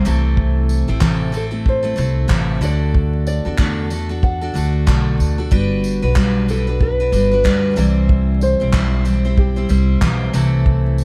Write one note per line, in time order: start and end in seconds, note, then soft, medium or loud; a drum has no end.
0.05 0.86 C2 loud
0.05 0.89 C3 medium
0.05 0.89 E3 medium
0.05 0.89 A3 medium
0.05 0.88 C4 medium
0.05 0.87 E4 medium
0.05 0.87 A4 medium
0.05 tambourine medium
0.37 kick loud
0.69 tambourine medium
0.88 1.94 A1 medium
0.88 1.00 A3 soft
0.88 1.00 C4 medium
0.88 1.00 E4 medium
0.88 1.01 A4 medium
1.00 1.33 C3 medium
1.00 1.33 E3 medium
1.00 1.31 A3 medium
1.00 1.31 C4 medium
1.00 1.32 E4 medium
1.00 1.32 A4 loud
1.00 kick loud
1.00 clap loud
1.32 1.52 A3 medium
1.32 1.51 C4 medium
1.32 1.50 E4 medium
1.32 1.50 A4 medium
1.32 tambourine medium
1.37 1.45 A4 medium
1.51 1.83 A3 soft
1.51 1.83 C4 soft
1.51 1.83 E4 medium
1.51 1.81 A4 medium
1.66 2.64 C5 medium
1.66 kick loud
1.83 1.95 A3 soft
1.83 1.96 C4 medium
1.83 1.96 E4 medium
1.83 1.96 A4 medium
1.96 2.28 C2 loud
1.96 2.27 A3 medium
1.96 2.27 C4 medium
1.96 2.27 E4 medium
1.96 2.28 A4 medium
1.96 tambourine medium
2.28 2.60 A1 medium
2.28 2.61 C3 medium
2.28 2.60 E3 medium
2.28 2.60 A3 medium
2.28 2.61 C4 medium
2.28 2.61 E4 medium
2.28 2.61 A4 medium
2.28 kick loud
2.28 clap loud
2.61 3.41 D2 medium
2.61 3.58 D3 medium
2.61 3.46 A3 medium
2.61 3.46 D4 medium
2.61 3.46 F#4 medium
2.61 3.44 A4 medium
2.61 3.26 D5 loud
2.61 tambourine medium
2.94 kick loud
3.27 4.19 D5 loud
3.27 tambourine medium
3.45 4.51 E2 medium
3.45 3.57 D4 soft
3.45 3.58 F#4 soft
3.45 3.58 A4 medium
3.58 3.91 D3 medium
3.58 3.89 A3 medium
3.58 3.90 D4 medium
3.58 3.90 F#4 medium
3.58 3.91 A4 medium
3.58 kick loud
3.58 clap loud
3.90 4.10 A3 medium
3.90 4.10 D4 medium
3.90 4.09 F#4 medium
3.90 4.08 A4 medium
3.90 tambourine medium
4.09 4.42 D4 soft
4.09 4.41 F#4 soft
4.09 4.40 A4 medium
4.23 4.84 F#5 medium
4.23 kick loud
4.41 4.53 D4 soft
4.41 4.54 F#4 medium
4.41 4.55 A4 medium
4.54 4.85 D2 medium
4.54 4.86 A3 medium
4.54 4.86 D4 medium
4.54 4.86 F#4 medium
4.54 4.86 A4 medium
4.54 tambourine medium
4.87 5.17 B1 medium
4.87 5.38 D3 medium
4.87 5.39 A3 medium
4.87 5.39 D4 medium
4.87 5.38 F#4 medium
4.87 5.37 A4 medium
4.87 kick loud
4.87 clap loud
5.20 5.49 D2 medium
5.20 tambourine medium
5.38 5.50 D4 soft
5.38 5.51 F#4 medium
5.38 5.51 A4 medium
5.51 5.99 G1 medium
5.51 6.03 G3 medium
5.51 6.03 D4 medium
5.51 6.02 F#4 medium
5.51 6.01 B4 medium
5.51 kick loud
5.84 tambourine medium
6.02 7.08 B1 medium
6.02 6.15 D4 soft
6.02 6.15 F#4 medium
6.02 6.16 B4 medium
6.16 6.47 G3 medium
6.16 6.48 D4 medium
6.16 6.48 F#4 medium
6.16 6.49 B4 medium
6.16 kick loud
6.16 clap loud
6.48 6.67 G3 medium
6.48 6.68 D4 medium
6.48 6.67 F#4 medium
6.48 6.82 A4 medium
6.48 6.66 B4 medium
6.48 tambourine medium
6.67 7.00 D4 soft
6.67 6.99 F#4 medium
6.67 6.99 B4 soft
6.81 7.74 B4 medium
6.81 kick loud
7.00 7.12 D4 soft
7.00 7.13 F#4 medium
7.00 7.13 B4 medium
7.12 7.42 G1 loud
7.12 7.32 G3 medium
7.12 7.32 D4 medium
7.12 7.31 F#4 medium
7.12 7.30 B4 medium
7.12 tambourine medium
7.31 7.43 D4 soft
7.31 7.44 F#4 soft
7.31 7.44 B4 medium
7.44 7.74 D2 medium
7.44 7.76 G3 medium
7.44 7.76 D4 medium
7.44 7.77 F#4 medium
7.44 7.77 B4 medium
7.44 kick loud
7.44 clap loud
7.76 8.56 C2 medium
7.76 8.60 C3 medium
7.76 8.73 E3 medium
7.76 8.60 G3 medium
7.76 8.61 C4 medium
7.76 8.60 E4 medium
7.76 8.59 C5 medium
7.76 8.38 D5 loud
7.76 tambourine medium
8.09 kick loud
8.41 9.34 C5 loud
8.41 tambourine medium
8.60 9.66 B1 medium
8.60 8.72 G3 soft
8.60 8.72 C4 soft
8.60 8.72 E4 medium
8.60 8.73 C5 medium
8.73 9.05 E3 medium
8.73 9.04 G3 medium
8.73 9.04 C4 medium
8.73 9.05 E4 medium
8.73 9.05 C5 medium
8.73 kick loud
8.73 clap loud
9.05 9.24 G3 medium
9.05 9.24 C4 medium
9.05 9.24 E4 medium
9.05 9.24 C5 medium
9.05 tambourine medium
9.25 9.57 G3 soft
9.25 9.57 C4 soft
9.25 9.56 E4 medium
9.25 9.55 C5 medium
9.38 9.98 G4 medium
9.38 kick loud
9.56 9.68 G3 soft
9.56 9.69 C4 soft
9.56 9.69 E4 medium
9.56 9.69 C5 medium
9.69 9.99 C2 loud
9.69 10.01 G3 medium
9.69 10.01 C4 medium
9.69 10.01 E4 medium
9.69 10.01 C5 medium
9.69 tambourine medium
10.02 10.31 B1 medium
10.02 10.32 E3 medium
10.02 10.33 G3 medium
10.02 10.33 C4 medium
10.02 10.33 E4 medium
10.02 10.34 C5 medium
10.02 kick loud
10.02 clap loud
10.33 11.04 C2 medium
10.33 11.04 C3 medium
10.33 11.04 E3 medium
10.33 11.04 A3 medium
10.33 11.04 C4 medium
10.33 11.04 E4 medium
10.33 11.04 A4 medium
10.33 tambourine medium
10.66 kick loud
10.98 tambourine medium